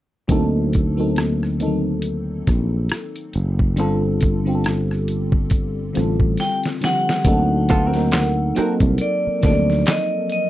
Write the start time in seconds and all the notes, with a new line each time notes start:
0.28 D2 F#3 A#3 C4 D#4 A4, kick, closed hi-hat
0.73 kick, closed hi-hat
0.97 F#3 A#3 C4 D#4 A4
1.16 cross-stick, closed hi-hat
1.43 cross-stick
1.59 D#3 A#3 C4 D#4 A4, closed hi-hat
1.66 F#3
2.02 closed hi-hat
2.47 A#1, kick, cross-stick, closed hi-hat
2.89 cross-stick, closed hi-hat
3.16 closed hi-hat
3.33 F#1, closed hi-hat
3.59 kick
3.76 G1 D3 G3 C4 F4, closed hi-hat
3.80 A4
4.21 kick, closed hi-hat
4.45 D3 G3 C4 F4 G4
4.55 A4
4.64 cross-stick, closed hi-hat
4.91 cross-stick
5.08 closed hi-hat
5.32 kick
5.50 kick, closed hi-hat
5.93 D3 G3 C4 F4 A4, cross-stick, closed hi-hat
5.97 A1
6.20 kick
6.37 G5, snare, closed hi-hat
6.63 snare, closed hi-hat
6.81 D3 F3 G3 C4 G4, snare, closed hi-hat
6.85 F#5
7.09 snare
7.24 D2 F#3 A#3 C4 D#4 A4, kick, closed hi-hat
7.69 B3 F4 A4, kick, closed hi-hat
7.86 C4 F#4 A#4
7.93 F#3 A#3 C4 D#4 A#4, snare, closed hi-hat
8.12 snare, clap, closed hi-hat
8.55 F#3 A#3 C4 D#4 F#4 A4 A#4, muted fretless electric bass stroke, closed hi-hat
8.80 C2, kick, closed hi-hat
8.98 D5, closed hi-hat
9.27 muted fretless electric bass stroke
9.41 D2 F3 A#3 C4 D#4 A4, kick, snare, closed hi-hat
9.46 F#3 D5
9.70 snare
9.86 D#5, snare, clap, closed hi-hat
10.29 D#5, closed hi-hat